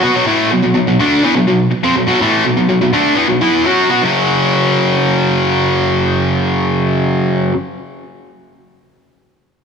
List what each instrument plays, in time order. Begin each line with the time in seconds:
0.03 distorted electric guitar B3 F#4
0.14 distorted electric guitar B2 F#3
0.26 distorted electric guitar A2 E3 A3
0.52 distorted electric guitar B2 F#3
0.63 distorted electric guitar B2 F#3
0.74 distorted electric guitar B2 F#3
0.87 distorted electric guitar B2 F#3
0.99 distorted electric guitar D3 A3 D4
1.23 distorted electric guitar E3 B3
1.35 distorted electric guitar B2 F#3
1.47 distorted electric guitar B2 F#3
1.71 muted distorted electric guitar stroke
1.83 distorted electric guitar F3 C4
1.95 distorted electric guitar B2 F#3
2.07 distorted electric guitar B2 F#3
2.21 distorted electric guitar A2 E3 A3
2.45 distorted electric guitar B2 F#3
2.57 distorted electric guitar B2 F#3
2.68 distorted electric guitar B2 F#3
2.81 distorted electric guitar B2 F#3
2.93 distorted electric guitar D3 A3 D4
3.16 distorted electric guitar E3 B3
3.29 distorted electric guitar B2 F#3
3.41 distorted electric guitar E3 B3 E4
3.65 distorted electric guitar F#3 C#4 F#4
3.90 distorted electric guitar B3 F#4
4.02 distorted electric guitar F#2 C#3
4.06 distorted electric guitar F#3